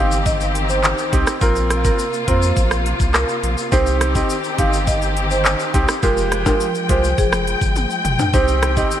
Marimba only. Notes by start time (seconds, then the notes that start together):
0.26 D#5
0.69 C5
1.41 A#4
1.85 A#4
2.28 C5
3.15 A#4
3.72 C5
4.16 D#5
4.59 F5
4.88 D#5
5.31 C5
6.03 A#4
6.46 A#4
6.90 C5
7.18 G#4
8.34 C5
8.77 D#5